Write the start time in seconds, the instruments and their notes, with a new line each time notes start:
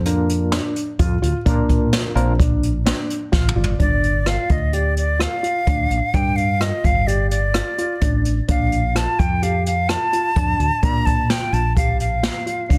Already playing: fretless electric bass F2
0.05 tine electric piano A#3 D4 F4 A#4, grand piano D4, closed hi-hat
0.29 closed hi-hat
0.52 grand piano D4, snare, closed hi-hat
0.76 closed hi-hat
0.99 fretless electric bass F2, grand piano F4, kick, closed hi-hat
1.22 fretless electric bass D2, grand piano F4, closed hi-hat
1.46 fretless electric bass A#2, tine electric piano A#3 D4 F4 A#4, grand piano D4, kick, closed hi-hat
1.69 kick, closed hi-hat
1.93 snare, closed hi-hat
2.15 fretless electric bass A#1, tine electric piano A#3 D4 F4 A#4, grand piano C4, closed hi-hat
2.39 grand piano D4, kick, closed hi-hat
2.63 closed hi-hat
2.85 grand piano D4, snare, closed hi-hat
3.10 closed hi-hat
3.32 fretless electric bass A1, grand piano F4, tine electric piano F5, kick, snare
3.48 mid tom
3.55 fretless electric bass G1, grand piano F4, tine electric piano D5
3.64 floor tom
3.79 fretless electric bass G1, grand piano D4, flute D5, kick, closed hi-hat
4.04 closed hi-hat
4.26 grand piano F4, flute F5, cross-stick, closed hi-hat
4.49 fretless electric bass D2, flute D#5, kick, closed hi-hat
4.73 grand piano G4, flute D5, closed hi-hat
4.97 flute D5, closed hi-hat
5.19 grand piano F4, flute F5, cross-stick, closed hi-hat
5.43 grand piano F4, closed hi-hat
5.67 fretless electric bass D2, grand piano D4, kick, closed hi-hat
5.90 fretless electric bass A#1, closed hi-hat
6.13 fretless electric bass G2, grand piano D4, flute G5, kick, closed hi-hat
6.36 flute F5, closed hi-hat
6.60 grand piano F4, flute D#5, cross-stick, closed hi-hat
6.84 fretless electric bass G1, flute F5, kick, closed hi-hat
7.07 grand piano G4, flute D5, closed hi-hat
7.30 flute D5, closed hi-hat
7.54 grand piano F4, cross-stick, closed hi-hat
7.78 grand piano F4, closed hi-hat
8.01 fretless electric bass A1, grand piano D4, kick, closed hi-hat
8.25 closed hi-hat
8.48 fretless electric bass A#1, grand piano D4, flute F5, kick, closed hi-hat
8.72 closed hi-hat
8.95 grand piano F4, flute A5, cross-stick, closed hi-hat
9.19 fretless electric bass F2, flute G5, kick, closed hi-hat
9.43 grand piano G4, flute F5, closed hi-hat
9.66 flute F5, closed hi-hat
9.89 grand piano F4, flute A5, cross-stick, closed hi-hat
10.13 grand piano F4, closed hi-hat
10.36 fretless electric bass F2, grand piano D4, kick, closed hi-hat
10.60 fretless electric bass D2, closed hi-hat
10.82 fretless electric bass A#2, grand piano D4, flute A#5, kick, closed hi-hat
11.05 flute A5, kick, closed hi-hat
11.30 grand piano F4, flute G5, snare, closed hi-hat
11.52 fretless electric bass A#1, flute A5, closed hi-hat
11.76 grand piano G4, flute F5, kick, closed hi-hat
12.00 flute F5, closed hi-hat
12.23 grand piano F4, snare, closed hi-hat
12.46 grand piano F4, closed hi-hat
12.69 fretless electric bass C#2, grand piano D4, kick, closed hi-hat